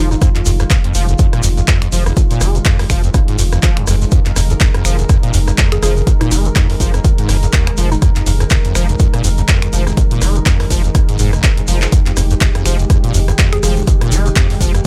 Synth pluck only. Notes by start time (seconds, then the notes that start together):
0.11 D#4
5.72 G#4
5.83 G#4
6.21 D#4
6.31 D#4
7.92 D#4
13.53 G#4
13.63 G#4